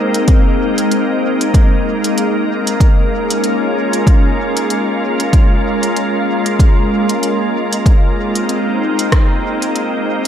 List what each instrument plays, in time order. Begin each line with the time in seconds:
Already playing: ambient pad G#3 A#3 C4 D#4 A#4
0.14 closed hi-hat
0.28 kick, closed hi-hat
0.78 closed hi-hat
0.91 closed hi-hat
1.41 closed hi-hat
1.54 kick, closed hi-hat
2.04 closed hi-hat
2.18 closed hi-hat
2.67 closed hi-hat
2.80 kick, closed hi-hat
2.98 ambient pad C#4
3.18 ambient pad F4
3.30 closed hi-hat
3.44 closed hi-hat
3.93 closed hi-hat
4.07 kick, closed hi-hat
4.57 closed hi-hat
4.70 closed hi-hat
5.20 closed hi-hat
5.33 kick, closed hi-hat
5.83 closed hi-hat
5.96 closed hi-hat
6.46 closed hi-hat
6.59 kick, closed hi-hat
7.09 closed hi-hat
7.23 closed hi-hat
7.73 closed hi-hat
7.86 kick, closed hi-hat
8.11 ambient pad C4 D#4
8.35 closed hi-hat
8.49 closed hi-hat
8.99 closed hi-hat
9.12 kick, cross-stick, closed hi-hat
9.62 closed hi-hat
9.76 closed hi-hat